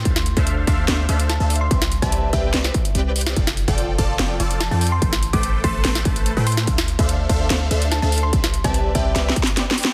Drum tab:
HH |x-----------x-----x-----x-----------x-----------x-----------x-----x-----x-----------o--x--------|x-----------x-----x-----x-----------x-----------x-----------x-----x-----x-----------o--x--------|x-----------x-----x-----x-----------x-----------x-----------x-----x-----x-----------o--x--------|x-----------x-----x-----x-----------x-----------x-----------x-----x-----x-----------o--x--------|
SD |------o-----------------------------------------o-----------------------o-----------------------|------o-----------------------------------------o-----o-----------------------------------o-----|------o-----------------------------------------o-----------------------o-----------------------|------o-----------------------------------------o-----o-----------------------------------o-----|
BD |o-----------------o-----------------o-----------------------------------------------------------|o-----------------o-----------------o-----------------------o-----------------------------------|o-----------------o-----------------o-----------------------------------------------------------|o-----------------o-----------------o-----------------------o-----------------------------------|

HH |x-----------x-----x-----x-----------x-----------x-----------x-----x-----x-----------o--x--------|x-----------x-----x-----x-----------x-----------x-----------x-----x-----x-----------o--x--------|
SD |------o-----------------------------------------o-----------------------o-----------------------|------o-----------------------------------------o-------o-------o-------o-------o-------o-------|
BD |o-----------------o-----------------o-----------------------------------------------------------|o-----------------o-----------------o-----------------------o-----------------------------------|